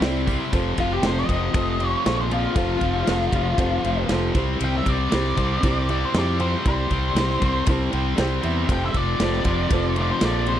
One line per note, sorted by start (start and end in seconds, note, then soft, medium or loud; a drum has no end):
0.00 0.36 C2 medium
0.00 0.26 C3 medium
0.00 0.51 C3 medium
0.00 0.27 G3 medium
0.00 0.28 G3 medium
0.00 0.27 C4 loud
0.00 0.27 C4 medium
0.00 0.43 E4 medium
0.00 0.43 C5 medium
0.00 0.44 D5 loud
0.00 0.50 G5 medium
0.00 snare loud
0.00 open hi-hat medium
0.05 0.25 E4 medium
0.26 0.52 G3 medium
0.26 0.52 C4 medium
0.26 0.51 E4 medium
0.26 kick medium
0.26 open hi-hat medium
0.52 0.72 F1 medium
0.52 0.78 F2 medium
0.52 0.77 C3 medium
0.52 0.78 F3 loud
0.52 0.94 F4 medium
0.52 0.94 A4 medium
0.52 0.94 C5 medium
0.52 kick loud
0.52 ride loud
0.78 0.98 F1 medium
0.78 1.01 F2 medium
0.78 1.01 C3 medium
0.78 1.02 F3 medium
0.78 0.93 F4 medium
0.78 kick medium
0.78 ride medium
0.93 1.05 G4 medium
1.01 1.23 F1 medium
1.01 1.27 F2 medium
1.01 1.27 C3 loud
1.01 1.28 F3 medium
1.01 1.44 F4 medium
1.01 1.45 A4 medium
1.01 1.45 C5 medium
1.01 snare loud
1.01 ride medium
1.06 1.29 F2 medium
1.06 1.30 F3 medium
1.06 1.18 C5 medium
1.17 1.88 D#5 medium
1.17 snare soft
1.28 1.49 F1 medium
1.28 1.52 F2 medium
1.28 1.52 C3 medium
1.28 1.52 F3 medium
1.28 kick medium
1.28 ride medium
1.53 1.94 F1 medium
1.53 1.78 F2 medium
1.53 1.78 C3 loud
1.53 1.79 F3 loud
1.53 1.95 F4 medium
1.53 1.95 A4 medium
1.53 1.96 C5 medium
1.53 kick loud
1.53 ride medium
1.79 2.04 F2 medium
1.79 2.05 C3 medium
1.79 2.05 F3 medium
1.79 ride medium
1.88 2.17 C#5 medium
2.05 2.46 A#1 medium
2.05 2.29 F2 medium
2.05 2.30 C3 medium
2.05 2.30 F3 medium
2.05 2.47 F4 medium
2.05 2.47 A4 medium
2.05 2.47 C5 medium
2.05 snare loud
2.05 ride medium
2.21 2.32 C5 medium
2.30 2.55 F2 medium
2.30 2.56 C3 medium
2.30 2.56 F3 medium
2.30 2.55 F4 medium
2.30 ride medium
2.55 2.76 F1 medium
2.55 2.80 F2 medium
2.55 2.81 C3 medium
2.55 2.81 F3 loud
2.55 2.98 F4 medium
2.55 4.06 F4 medium
2.55 2.98 A4 medium
2.55 2.98 C5 medium
2.55 kick loud
2.55 ride medium
2.81 3.02 F1 medium
2.81 3.05 F2 medium
2.81 3.06 C3 medium
2.81 3.06 F3 medium
2.81 kick medium
2.81 ride medium
3.06 3.28 F1 medium
3.06 3.30 F2 medium
3.06 3.31 C3 medium
3.06 3.32 F3 loud
3.06 3.49 F4 medium
3.06 3.49 A4 medium
3.06 3.49 C5 medium
3.06 snare loud
3.06 ride medium
3.20 snare soft
3.32 3.53 F1 medium
3.32 3.56 F2 medium
3.32 3.57 C3 medium
3.32 3.57 F3 medium
3.32 kick medium
3.32 ride medium
3.57 3.78 F1 medium
3.57 3.83 F2 medium
3.57 3.83 C3 loud
3.57 3.84 F3 loud
3.57 4.00 F4 medium
3.57 4.00 A4 medium
3.57 4.00 C5 medium
3.57 kick loud
3.57 ride loud
3.84 4.04 F1 medium
3.84 4.09 F2 medium
3.84 4.09 C3 medium
3.84 4.10 F3 medium
3.84 ride medium
4.09 4.30 F1 medium
4.09 4.34 F2 medium
4.09 4.32 C3 loud
4.09 4.34 F3 medium
4.09 4.36 F4 medium
4.09 4.36 A4 medium
4.09 4.34 C5 medium
4.09 snare loud
4.09 ride medium
4.33 4.55 C2 medium
4.33 4.59 C3 medium
4.33 4.60 G3 medium
4.33 4.60 C4 loud
4.33 4.97 E4 medium
4.33 4.97 G4 medium
4.33 4.97 C5 loud
4.33 kick loud
4.33 ride medium
4.59 4.81 C2 medium
4.59 4.85 C3 medium
4.59 4.86 G3 loud
4.59 4.86 C4 medium
4.59 ride medium
4.65 4.76 G5 loud
4.77 4.88 E5 medium
4.86 5.07 C2 medium
4.86 5.10 C3 medium
4.86 5.10 G3 medium
4.86 5.11 C4 medium
4.86 5.88 D5 loud
4.86 kick medium
4.86 ride medium
5.10 5.33 C2 medium
5.10 5.36 C3 medium
5.10 5.37 G3 loud
5.10 5.37 C4 loud
5.10 5.54 E4 medium
5.10 5.54 G4 medium
5.10 snare loud
5.10 ride medium
5.15 5.55 C5 medium
5.25 snare soft
5.37 5.57 C2 medium
5.37 5.61 C3 medium
5.37 5.62 G3 medium
5.37 5.63 C4 medium
5.37 kick medium
5.37 ride medium
5.62 6.03 C2 medium
5.62 5.88 C3 loud
5.62 5.89 G3 loud
5.62 5.90 C4 loud
5.62 6.05 E4 medium
5.62 6.05 G4 medium
5.62 6.05 C5 medium
5.62 kick loud
5.62 ride loud
5.89 6.14 C3 medium
5.89 6.14 G3 medium
5.89 6.16 C4 medium
5.89 6.05 D5 medium
5.89 ride medium
6.05 6.16 C5 medium
6.14 6.54 F2 medium
6.14 6.38 C3 medium
6.14 6.39 G3 medium
6.14 6.40 C4 loud
6.14 6.56 E4 medium
6.14 6.56 G4 medium
6.14 6.57 C5 medium
6.14 snare loud
6.14 ride medium
6.19 6.40 D5 medium
6.40 6.63 C3 medium
6.40 6.64 G3 medium
6.40 6.65 C4 loud
6.40 6.65 C5 medium
6.40 ride medium
6.64 6.85 C2 medium
6.64 6.89 C3 loud
6.64 6.89 G3 loud
6.64 6.90 C4 medium
6.64 7.06 E4 medium
6.64 7.07 G4 medium
6.64 7.66 C5 loud
6.64 7.08 D5 medium
6.64 kick loud
6.64 ride medium
6.90 7.11 C2 medium
6.90 7.15 C3 medium
6.90 7.15 G3 medium
6.90 7.16 C4 medium
6.90 kick medium
6.90 ride medium
7.15 7.35 C2 medium
7.15 7.39 C3 medium
7.15 7.40 G3 medium
7.15 7.41 C4 loud
7.15 7.58 E4 medium
7.15 7.58 G4 medium
7.15 snare loud
7.15 ride medium
7.19 7.59 C5 medium
7.30 snare soft
7.41 7.62 C2 medium
7.41 7.65 C3 medium
7.41 7.65 G3 medium
7.41 7.66 C4 loud
7.41 7.67 C6 medium
7.41 kick medium
7.41 ride medium
7.66 7.87 C2 medium
7.66 7.90 C3 medium
7.66 7.90 G3 loud
7.66 7.92 C4 loud
7.66 8.09 E4 medium
7.66 8.09 G4 medium
7.66 8.09 C5 medium
7.66 7.92 A5 medium
7.66 kick loud
7.66 ride loud
7.91 8.13 C2 medium
7.91 8.15 C3 medium
7.91 8.15 G3 medium
7.91 8.17 C4 medium
7.91 8.17 G5 medium
7.91 ride medium
8.16 8.38 C2 medium
8.16 8.40 C3 medium
8.16 8.41 G3 loud
8.16 8.42 C4 loud
8.16 8.59 E4 medium
8.16 8.60 G4 medium
8.16 8.60 C5 loud
8.16 8.42 G5 medium
8.16 snare loud
8.16 ride medium
8.41 8.64 E2 medium
8.41 8.67 C3 medium
8.41 8.67 G3 medium
8.41 10.60 C4 medium
8.41 8.68 E5 medium
8.41 ride medium
8.67 8.89 F1 medium
8.67 8.93 F2 medium
8.67 8.94 C3 loud
8.67 8.94 F3 loud
8.67 9.10 F4 medium
8.67 9.11 A4 medium
8.67 9.11 C5 medium
8.67 kick loud
8.67 ride loud
8.72 8.83 G5 loud
8.86 8.97 E5 medium
8.94 9.14 F1 medium
8.94 9.19 F2 medium
8.94 9.19 C3 medium
8.94 9.21 F3 medium
8.94 9.95 D5 loud
8.94 kick medium
8.94 ride medium
9.19 9.40 F1 medium
9.19 9.43 F2 medium
9.19 9.44 C3 medium
9.19 9.44 F3 loud
9.19 9.61 F4 medium
9.19 9.61 A4 medium
9.19 9.62 C5 medium
9.19 snare loud
9.19 ride medium
9.33 snare soft
9.44 9.65 F1 medium
9.44 9.69 F2 medium
9.44 9.70 C3 medium
9.44 9.70 F3 medium
9.44 kick medium
9.44 ride medium
9.70 10.11 F1 medium
9.70 9.95 F2 loud
9.70 9.96 C3 loud
9.70 9.96 F3 loud
9.70 10.12 F4 medium
9.70 10.13 A4 medium
9.70 10.13 C5 loud
9.70 kick loud
9.70 ride loud
9.96 10.20 F2 medium
9.96 10.21 C3 medium
9.96 10.22 F3 medium
9.96 ride medium
10.01 10.11 D5 medium
10.11 10.25 C5 medium
10.21 10.60 A#1 medium
10.21 10.46 F2 medium
10.21 10.46 C3 medium
10.21 10.47 F3 loud
10.21 10.60 F4 medium
10.21 10.60 A4 medium
10.21 10.60 C5 medium
10.21 10.48 D5 medium
10.21 snare loud
10.21 ride medium
10.46 10.60 F2 medium
10.46 10.60 C3 medium
10.46 10.60 F3 medium
10.46 10.60 C5 medium
10.46 ride medium